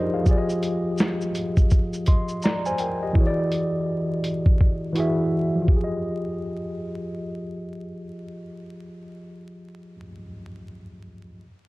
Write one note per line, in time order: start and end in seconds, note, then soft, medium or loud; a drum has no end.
0.00 0.23 F3 medium
0.00 0.28 D4 medium
0.00 0.28 D#4 medium
0.00 0.26 F4 medium
0.00 0.27 G4 medium
0.00 0.14 G#4 medium
0.00 0.27 A#4 medium
0.00 0.27 C5 medium
0.00 0.28 D5 loud
0.00 0.12 D#5 medium
0.14 0.28 G#4 soft
0.14 0.47 F5 medium
0.23 1.29 F3 medium
0.23 1.30 F4 medium
0.23 1.31 G4 medium
0.23 kick loud
0.23 shaker medium
0.29 1.32 G#4 medium
0.29 0.36 D5 medium
0.37 1.36 D#5 medium
0.50 shaker medium
0.63 closed hi-hat medium
0.63 shaker soft
0.98 snare loud
0.98 shaker medium
1.21 shaker soft
1.35 closed hi-hat medium
1.35 shaker soft
1.57 kick loud
1.57 shaker soft
1.70 kick medium
1.70 shaker medium
1.93 shaker soft
2.06 2.42 D#5 medium
2.06 2.41 C6 medium
2.06 kick medium
2.06 closed hi-hat medium
2.06 shaker medium
2.28 shaker soft
2.42 2.65 D5 medium
2.42 2.65 A#5 medium
2.42 snare loud
2.42 shaker medium
2.65 2.79 C5 medium
2.65 2.79 G#5 medium
2.65 shaker soft
2.78 3.01 A#4 medium
2.78 3.01 G5 medium
2.78 closed hi-hat medium
2.78 shaker soft
3.03 3.37 G4 soft
3.03 3.36 D#5 medium
3.13 4.18 E3 medium
3.13 4.19 E4 medium
3.13 4.20 F#4 medium
3.13 kick loud
3.18 4.21 G#4 medium
3.18 3.26 C#5 medium
3.27 4.25 D5 medium
3.52 closed hi-hat medium
4.24 closed hi-hat medium
4.46 kick medium
4.61 kick medium
4.93 5.67 E3 medium
4.93 5.68 E4 medium
4.93 5.68 F#4 medium
4.93 closed hi-hat medium
4.98 5.69 G#4 medium
4.98 5.70 E5 medium
5.55 9.95 F3 medium
5.62 10.02 F4 medium
5.68 10.09 G4 medium
5.68 kick medium
5.76 10.16 G#4 medium
5.84 10.24 D#5 medium